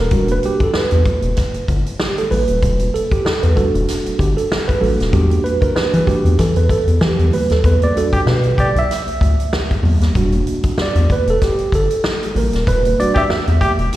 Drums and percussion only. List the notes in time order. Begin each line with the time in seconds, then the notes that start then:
0.11 kick, closed hi-hat, muted conga, low conga
0.28 closed hi-hat, muted conga, high conga
0.43 closed hi-hat
0.60 kick, closed hi-hat
0.74 snare, muted conga
0.91 closed hi-hat, muted conga
1.05 kick, closed hi-hat, high conga, low conga
1.22 closed hi-hat
1.37 kick, snare, closed hi-hat
1.54 closed hi-hat, muted conga
1.68 kick, closed hi-hat
1.86 closed hi-hat
2.00 snare
2.18 closed hi-hat, muted conga
2.31 open hi-hat, high conga, low conga
2.48 closed hi-hat
2.63 kick, closed hi-hat, muted conga, low conga
2.79 closed hi-hat, muted conga, high conga
2.95 closed hi-hat
3.12 kick, closed hi-hat
3.26 snare, muted conga
3.43 closed hi-hat, muted conga
3.56 kick, closed hi-hat, high conga, low conga
3.75 closed hi-hat
3.88 snare, closed hi-hat
4.06 closed hi-hat, muted conga
4.19 kick, closed hi-hat
4.38 closed hi-hat
4.51 snare, muted conga
4.69 kick, closed hi-hat
4.81 open hi-hat, high conga, low conga
5.00 snare, closed hi-hat
5.13 kick, closed hi-hat, low conga
5.30 closed hi-hat, muted conga, high conga
5.46 closed hi-hat
5.62 kick, closed hi-hat
5.76 snare
5.93 closed hi-hat, muted conga
6.07 kick, closed hi-hat, high conga, low conga
6.26 closed hi-hat
6.39 kick, snare, closed hi-hat
6.56 closed hi-hat
6.69 kick, closed hi-hat
6.88 closed hi-hat
7.01 snare, muted conga
7.18 closed hi-hat, muted conga
7.31 open hi-hat, high conga, low conga
7.50 snare, closed hi-hat
7.64 kick, closed hi-hat, low conga
7.80 closed hi-hat, muted conga, high conga
7.97 closed hi-hat
8.13 kick, closed hi-hat
8.27 snare, muted conga
8.43 closed hi-hat, muted conga
8.57 kick, closed hi-hat, high conga, low conga
8.76 closed hi-hat
8.90 snare, closed hi-hat, muted conga
9.06 closed hi-hat, muted conga
9.21 kick, closed hi-hat
9.40 closed hi-hat
9.53 snare, muted conga
9.71 kick, closed hi-hat
9.83 open hi-hat, high conga, low conga
10.01 snare, closed hi-hat
10.15 kick, closed hi-hat, muted conga, low conga
10.32 closed hi-hat, muted conga, high conga
10.47 closed hi-hat
10.63 kick, closed hi-hat
10.78 snare
10.95 closed hi-hat, muted conga
11.08 kick, closed hi-hat, high conga, low conga
11.27 closed hi-hat
11.41 kick, snare, closed hi-hat
11.58 closed hi-hat
11.72 kick, closed hi-hat
11.90 closed hi-hat
12.04 snare
12.22 closed hi-hat, muted conga
12.35 open hi-hat, high conga, low conga
12.53 snare, closed hi-hat
12.67 kick, closed hi-hat, low conga
12.84 closed hi-hat, muted conga, high conga
13.00 closed hi-hat
13.16 kick, closed hi-hat
13.30 snare
13.47 closed hi-hat, muted conga
13.61 kick, closed hi-hat, high conga, low conga
13.79 closed hi-hat
13.93 snare, closed hi-hat, muted conga